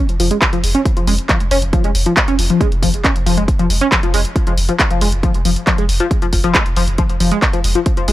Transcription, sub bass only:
0, 0, Header, 1, 2, 480
1, 0, Start_track
1, 0, Key_signature, -4, "minor"
1, 0, Tempo, 437956
1, 937, Time_signature, 4, 2, 24, 8
1, 8905, End_track
2, 0, Start_track
2, 0, Title_t, "Sub bass"
2, 0, Program_c, 0, 38
2, 99, Note_on_c, 0, 29, 78
2, 209, Note_off_c, 0, 29, 0
2, 215, Note_on_c, 0, 29, 99
2, 335, Note_off_c, 0, 29, 0
2, 580, Note_on_c, 0, 29, 75
2, 690, Note_off_c, 0, 29, 0
2, 697, Note_on_c, 0, 29, 100
2, 816, Note_off_c, 0, 29, 0
2, 1058, Note_on_c, 0, 29, 83
2, 1169, Note_off_c, 0, 29, 0
2, 1176, Note_on_c, 0, 29, 103
2, 1295, Note_off_c, 0, 29, 0
2, 1539, Note_on_c, 0, 29, 77
2, 1649, Note_off_c, 0, 29, 0
2, 1655, Note_on_c, 0, 29, 110
2, 1771, Note_off_c, 0, 29, 0
2, 1778, Note_on_c, 0, 29, 79
2, 1894, Note_off_c, 0, 29, 0
2, 2018, Note_on_c, 0, 29, 79
2, 2129, Note_off_c, 0, 29, 0
2, 2136, Note_on_c, 0, 29, 100
2, 2255, Note_off_c, 0, 29, 0
2, 2498, Note_on_c, 0, 29, 76
2, 2610, Note_off_c, 0, 29, 0
2, 2616, Note_on_c, 0, 29, 97
2, 2736, Note_off_c, 0, 29, 0
2, 2977, Note_on_c, 0, 29, 78
2, 3089, Note_off_c, 0, 29, 0
2, 3096, Note_on_c, 0, 29, 97
2, 3215, Note_off_c, 0, 29, 0
2, 3457, Note_on_c, 0, 29, 75
2, 3567, Note_off_c, 0, 29, 0
2, 3574, Note_on_c, 0, 29, 110
2, 3690, Note_off_c, 0, 29, 0
2, 3696, Note_on_c, 0, 29, 81
2, 3813, Note_off_c, 0, 29, 0
2, 3938, Note_on_c, 0, 29, 79
2, 4048, Note_off_c, 0, 29, 0
2, 4054, Note_on_c, 0, 29, 98
2, 4175, Note_off_c, 0, 29, 0
2, 4416, Note_on_c, 0, 29, 78
2, 4527, Note_off_c, 0, 29, 0
2, 4533, Note_on_c, 0, 29, 96
2, 4654, Note_off_c, 0, 29, 0
2, 4895, Note_on_c, 0, 29, 81
2, 5009, Note_off_c, 0, 29, 0
2, 5015, Note_on_c, 0, 29, 105
2, 5135, Note_off_c, 0, 29, 0
2, 5376, Note_on_c, 0, 29, 79
2, 5488, Note_off_c, 0, 29, 0
2, 5495, Note_on_c, 0, 29, 103
2, 5610, Note_off_c, 0, 29, 0
2, 5617, Note_on_c, 0, 29, 84
2, 5734, Note_off_c, 0, 29, 0
2, 5856, Note_on_c, 0, 29, 79
2, 5967, Note_off_c, 0, 29, 0
2, 5973, Note_on_c, 0, 29, 100
2, 6094, Note_off_c, 0, 29, 0
2, 6335, Note_on_c, 0, 29, 75
2, 6448, Note_off_c, 0, 29, 0
2, 6454, Note_on_c, 0, 29, 101
2, 6575, Note_off_c, 0, 29, 0
2, 6818, Note_on_c, 0, 29, 81
2, 6929, Note_off_c, 0, 29, 0
2, 6935, Note_on_c, 0, 29, 99
2, 7055, Note_off_c, 0, 29, 0
2, 7296, Note_on_c, 0, 29, 76
2, 7409, Note_off_c, 0, 29, 0
2, 7415, Note_on_c, 0, 29, 101
2, 7531, Note_off_c, 0, 29, 0
2, 7537, Note_on_c, 0, 29, 82
2, 7654, Note_off_c, 0, 29, 0
2, 7778, Note_on_c, 0, 29, 82
2, 7888, Note_off_c, 0, 29, 0
2, 7895, Note_on_c, 0, 29, 98
2, 8015, Note_off_c, 0, 29, 0
2, 8258, Note_on_c, 0, 29, 78
2, 8371, Note_off_c, 0, 29, 0
2, 8377, Note_on_c, 0, 29, 101
2, 8496, Note_off_c, 0, 29, 0
2, 8739, Note_on_c, 0, 29, 81
2, 8850, Note_off_c, 0, 29, 0
2, 8856, Note_on_c, 0, 29, 100
2, 8905, Note_off_c, 0, 29, 0
2, 8905, End_track
0, 0, End_of_file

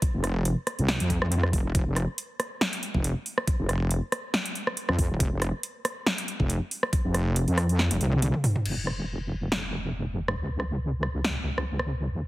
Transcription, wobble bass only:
0, 0, Header, 1, 2, 480
1, 0, Start_track
1, 0, Tempo, 431655
1, 24, Time_signature, 4, 2, 24, 8
1, 13650, End_track
2, 0, Start_track
2, 0, Title_t, "Wobble bass"
2, 0, Program_c, 0, 39
2, 155, Note_on_c, 0, 29, 96
2, 614, Note_off_c, 0, 29, 0
2, 874, Note_on_c, 0, 36, 101
2, 1094, Note_off_c, 0, 36, 0
2, 1114, Note_on_c, 0, 41, 98
2, 1334, Note_off_c, 0, 41, 0
2, 1354, Note_on_c, 0, 41, 96
2, 1686, Note_off_c, 0, 41, 0
2, 1704, Note_on_c, 0, 29, 96
2, 1927, Note_off_c, 0, 29, 0
2, 1944, Note_on_c, 0, 29, 98
2, 2054, Note_off_c, 0, 29, 0
2, 2075, Note_on_c, 0, 29, 96
2, 2294, Note_off_c, 0, 29, 0
2, 3275, Note_on_c, 0, 29, 97
2, 3494, Note_off_c, 0, 29, 0
2, 3995, Note_on_c, 0, 29, 100
2, 4454, Note_off_c, 0, 29, 0
2, 5435, Note_on_c, 0, 41, 94
2, 5654, Note_off_c, 0, 41, 0
2, 5675, Note_on_c, 0, 27, 99
2, 5767, Note_off_c, 0, 27, 0
2, 5784, Note_on_c, 0, 29, 98
2, 5894, Note_off_c, 0, 29, 0
2, 5915, Note_on_c, 0, 29, 101
2, 6134, Note_off_c, 0, 29, 0
2, 7115, Note_on_c, 0, 29, 93
2, 7334, Note_off_c, 0, 29, 0
2, 7836, Note_on_c, 0, 29, 101
2, 8294, Note_off_c, 0, 29, 0
2, 8316, Note_on_c, 0, 41, 102
2, 8774, Note_off_c, 0, 41, 0
2, 8796, Note_on_c, 0, 29, 97
2, 8887, Note_off_c, 0, 29, 0
2, 8906, Note_on_c, 0, 36, 94
2, 9255, Note_off_c, 0, 36, 0
2, 9625, Note_on_c, 0, 29, 81
2, 11523, Note_off_c, 0, 29, 0
2, 11545, Note_on_c, 0, 37, 81
2, 13443, Note_off_c, 0, 37, 0
2, 13465, Note_on_c, 0, 39, 81
2, 13650, Note_off_c, 0, 39, 0
2, 13650, End_track
0, 0, End_of_file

